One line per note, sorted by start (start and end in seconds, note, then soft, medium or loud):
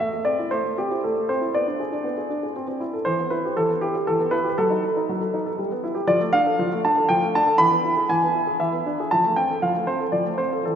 0.00 0.12 A3 soft
0.00 0.22 E5 medium
0.13 0.26 A3 soft
0.25 0.39 C4 soft
0.25 0.50 D5 medium
0.39 0.52 E4 soft
0.51 0.62 A3 soft
0.51 0.76 C5 medium
0.64 0.77 A3 soft
0.78 0.91 C4 soft
0.78 1.00 G4 medium
0.91 1.03 E4 soft
1.04 1.15 A3 soft
1.04 1.28 A4 soft
1.17 1.29 A3 soft
1.29 1.42 C4 soft
1.29 1.53 C5 medium
1.41 1.53 E4 soft
1.54 1.66 B3 soft
1.54 2.81 D5 medium
1.67 1.80 D4 soft
1.80 1.92 G#4 soft
1.92 2.05 D4 soft
2.04 2.16 B3 soft
2.18 2.30 G#4 soft
2.30 2.43 D4 soft
2.43 2.55 G#4 soft
2.56 2.66 C4 soft
2.68 2.81 C4 soft
2.80 2.93 E4 soft
2.93 3.05 A4 soft
3.05 3.18 E3 medium
3.05 3.30 C5 medium
3.19 3.32 B3 soft
3.30 3.44 E4 soft
3.30 3.56 B4 medium
3.45 3.58 G4 soft
3.57 3.69 E3 soft
3.57 3.72 A4 medium
3.69 3.82 B3 soft
3.81 3.95 E4 soft
3.81 3.94 G4 medium
3.95 4.08 G4 soft
4.07 4.20 E3 soft
4.07 4.32 A4 medium
4.19 4.33 B3 soft
4.31 4.45 E4 soft
4.31 4.48 B4 medium
4.44 4.57 G4 soft
4.50 4.57 B4 medium
4.58 4.70 F#3 medium
4.58 4.83 A4 medium
4.70 4.83 D#4 soft
4.84 4.96 A4 soft
4.97 5.09 D#4 soft
5.09 5.21 F#3 soft
5.21 5.34 A4 soft
5.34 5.46 D#4 soft
5.46 5.58 A4 soft
5.59 5.70 G3 soft
5.71 5.84 B3 soft
5.84 5.97 E4 soft
5.95 6.08 G4 medium
6.07 6.20 F3 medium
6.07 6.23 D5 medium
6.20 6.33 A3 soft
6.33 6.46 D4 soft
6.33 6.79 F5 loud
6.46 6.59 A4 soft
6.59 6.71 F3 medium
6.72 6.85 A3 soft
6.85 6.97 D4 soft
6.85 7.07 A5 medium
6.98 7.10 A4 soft
7.09 7.21 F3 medium
7.09 7.24 G5 medium
7.22 7.35 A3 soft
7.35 7.47 D4 soft
7.35 7.57 A5 medium
7.47 7.59 A4 soft
7.58 7.70 E3 medium
7.58 8.09 B5 loud
7.71 7.84 B3 soft
7.84 7.97 E4 soft
7.97 8.10 G#4 soft
8.09 8.21 E3 medium
8.09 8.56 G#5 medium
8.23 8.35 B3 soft
8.35 8.48 E4 soft
8.47 8.60 G#4 soft
8.59 8.71 E3 medium
8.59 9.06 E5 medium
8.72 8.85 B3 soft
8.86 8.99 D4 soft
9.00 9.11 G#4 soft
9.11 9.23 F3 medium
9.11 9.33 A5 medium
9.25 9.37 A3 soft
9.36 9.49 C4 soft
9.36 9.59 G5 medium
9.51 9.63 A4 soft
9.62 9.74 F3 soft
9.62 9.87 F5 medium
9.75 9.88 A3 soft
9.87 10.00 C4 soft
9.87 10.03 C5 medium
10.00 10.13 A4 soft
10.12 10.25 F3 soft
10.12 10.28 D5 medium
10.25 10.39 A3 soft
10.38 10.52 C4 soft
10.38 10.62 C5 medium
10.53 10.64 A4 soft
10.65 10.75 E3 soft
10.65 10.75 A4 medium